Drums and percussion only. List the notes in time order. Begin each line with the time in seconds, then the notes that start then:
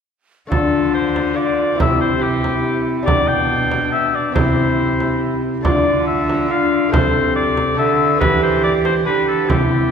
0.52 frame drum
1.16 frame drum
1.80 frame drum
2.44 frame drum
3.08 frame drum
3.72 frame drum
4.36 frame drum
5.00 frame drum
5.65 frame drum
6.29 frame drum
6.93 frame drum
7.57 frame drum
8.21 frame drum
8.85 frame drum
9.50 frame drum